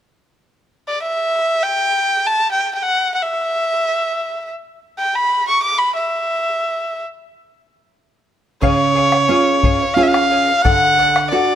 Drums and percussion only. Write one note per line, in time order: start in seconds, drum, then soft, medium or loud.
8.62 bombo rim soft
8.62 bombo low soft
8.97 bombo rim soft
9.12 bombo rim soft
9.30 bombo rim soft
9.63 bombo low medium
9.97 bombo rim soft
10.14 bombo rim soft
10.65 bombo rim soft
10.65 bombo low medium
10.99 bombo rim soft
11.16 bombo rim medium
11.33 bombo rim soft